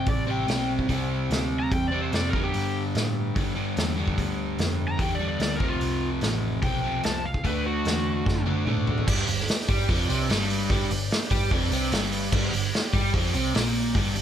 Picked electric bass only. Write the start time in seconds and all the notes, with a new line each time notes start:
0.07 A1
0.48 B1
0.89 C2
1.30 D2
1.72 E2
2.13 F2
2.54 G2
2.95 A2
3.36 G2
3.77 E2
4.18 D2
4.59 F2
4.99 E2
5.40 D2
5.81 C2
6.22 A1
6.63 B1
7.04 C2
7.45 D2
7.85 E2
8.26 F#2
8.67 A2
9.08 G1
9.28 G1
9.69 G2
9.89 F1
10.09 C2
10.29 G1
10.70 G1
10.91 G1
11.31 G2
11.52 F1
11.71 C2
11.92 G1
12.33 G1
12.53 G1
12.93 G2
13.14 F1
13.34 C2
13.55 A#1
13.95 G1
14.16 G1